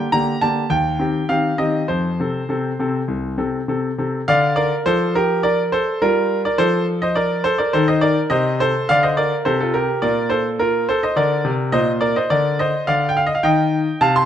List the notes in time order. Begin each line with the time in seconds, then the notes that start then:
0.12 D3 A#3 G4 A#5
0.41 D3 A#3 G4 A5
0.70 D#2 G5
0.99 D#3 C4 G4
1.29 D#3 C4 G4 F5
1.58 D#3 C4 G4 D#5
1.88 F2 C5
2.20 C3 C4 A4
2.49 C3 C4 A4
2.79 C3 C4 A4
3.08 C2
3.38 C3 C4 A4
3.68 C3 C4 A4
3.98 C3 C4 A4
4.28 D3 D5 F5
4.56 A#4 D5
4.86 F3 A4 C5
5.15 G4 A#4
5.43 A#4 D5
5.72 A4 C5
6.02 G3 F4 A#4
6.45 A#4 D5
6.58 F3 A4 C5
7.02 C5 D#5
7.15 A#4 D5
7.44 A4 C5
7.58 A#4 D5
7.73 D#3 A4 C5
7.88 C5 D#5
8.01 A#4 D5
8.30 C3 C5 D#5
8.60 A4 C5
8.89 D3 D5 F5
9.03 C5 D#5
9.17 A#4 D5
9.45 C3 A4 C5
9.61 F4 A4
9.74 G4 A#4
10.02 A#2 A#4 D5
10.30 A4 C5
10.59 F4 A#4
10.89 A4 C5
11.03 C5 D#5
11.16 D3 A#4 D5
11.45 C3
11.72 A#2 C5 D#5
12.01 A#4 D5
12.16 C5 D#5
12.30 D3 A#4 D5
12.59 C5 D#5
12.87 D3 D5 F5
13.09 G5
13.17 F5
13.27 D#5
13.35 F5
13.43 D#3 D#5 G5
14.01 C3 F5 A5
14.16 A5 C6